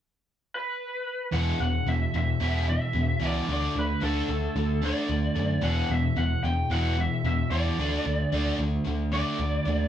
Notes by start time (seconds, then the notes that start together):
0.55 B4
1.33 E1 E2 B2 E3 F#5
1.60 E1 E2 B2 F#5
1.86 E1 E2 B2 E5
2.14 E1 E2 B2 E5
2.40 E1 E2 B2 E3
2.68 E2 B2 E5
2.93 E1 E2 B2
3.20 C#2 E2 B2 E3
3.27 D5
3.46 D2 D3 A3 D4
3.53 D5
3.75 D2 D3 A3
3.79 B4
4.01 D2 D3 A3 D4 A4
4.29 D2 D3 A3
4.56 D2 D3 A3
4.83 D3 A3 D4 D5
5.09 D2 D3 A3
5.36 F#2 D3 A3
5.62 E1 E2 B2 E3 F#5
5.90 E1 E2 B2 E5
6.16 E1 E2 B2 F#5
6.43 E1 E2 B2 G5
6.70 E1 E2 B2 E3 F#5
6.98 E2 B2 E5
7.24 E1 E2 B2 E5
7.50 E2 B2 E3 D5
7.78 D2 D3 A3 D4
8.05 D2 D3 A3
8.32 D2 D3 A3 D4
8.59 D2 D3 A3
8.85 D2 D3 A3
9.12 D3 A3 D4 D5
9.39 D2 D3 A3
9.65 D#2 D3 A3